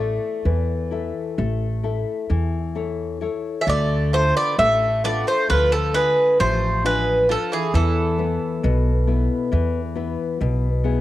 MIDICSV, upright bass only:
0, 0, Header, 1, 2, 480
1, 0, Start_track
1, 0, Tempo, 918836
1, 1922, Time_signature, 9, 3, 24, 8
1, 2875, Tempo, 891530
1, 5839, End_track
2, 0, Start_track
2, 0, Title_t, "Upright bass"
2, 0, Program_c, 0, 32
2, 0, Note_on_c, 0, 33, 95
2, 89, Note_off_c, 0, 33, 0
2, 236, Note_on_c, 0, 40, 84
2, 576, Note_off_c, 0, 40, 0
2, 722, Note_on_c, 0, 33, 90
2, 1060, Note_off_c, 0, 33, 0
2, 1201, Note_on_c, 0, 40, 80
2, 1705, Note_off_c, 0, 40, 0
2, 1916, Note_on_c, 0, 38, 97
2, 2252, Note_off_c, 0, 38, 0
2, 2395, Note_on_c, 0, 33, 86
2, 2728, Note_off_c, 0, 33, 0
2, 2874, Note_on_c, 0, 38, 82
2, 3214, Note_off_c, 0, 38, 0
2, 3359, Note_on_c, 0, 33, 96
2, 3867, Note_off_c, 0, 33, 0
2, 4078, Note_on_c, 0, 40, 96
2, 4416, Note_off_c, 0, 40, 0
2, 4563, Note_on_c, 0, 35, 92
2, 4898, Note_off_c, 0, 35, 0
2, 5040, Note_on_c, 0, 40, 85
2, 5374, Note_off_c, 0, 40, 0
2, 5517, Note_on_c, 0, 35, 89
2, 5839, Note_off_c, 0, 35, 0
2, 5839, End_track
0, 0, End_of_file